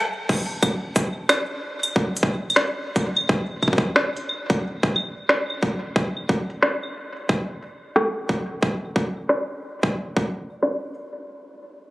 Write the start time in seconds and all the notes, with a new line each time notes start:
0.29 kick, crash
0.63 kick, closed hi-hat, claves
0.96 kick, closed hi-hat
1.29 snare, closed hi-hat, claves
1.83 closed hi-hat, claves
1.96 kick
2.17 closed hi-hat
2.23 kick
2.50 closed hi-hat, claves
2.56 snare
2.96 kick, closed hi-hat
3.17 claves
3.29 kick
3.63 kick, closed hi-hat, claves
3.68 kick
3.73 kick
3.78 kick
3.96 snare
4.17 closed hi-hat
4.29 claves
4.50 kick, closed hi-hat
4.83 kick, closed hi-hat
4.96 claves
5.29 snare, closed hi-hat
5.50 claves
5.63 kick, closed hi-hat
5.96 kick, closed hi-hat
6.17 claves
6.29 kick
6.50 closed hi-hat
6.63 snare
6.83 claves
7.17 closed hi-hat
7.29 kick, claves
7.62 closed hi-hat
7.96 snare, closed hi-hat, claves
8.29 kick
8.63 kick, claves
8.74 claves
8.85 claves
8.96 kick
9.17 closed hi-hat, claves
9.29 snare
9.63 closed hi-hat
9.83 kick, claves
9.96 closed hi-hat
10.17 kick
10.29 closed hi-hat
10.50 claves
10.63 snare, closed hi-hat
10.69 closed hi-hat
10.74 closed hi-hat
10.83 closed hi-hat
10.85 closed hi-hat
10.92 closed hi-hat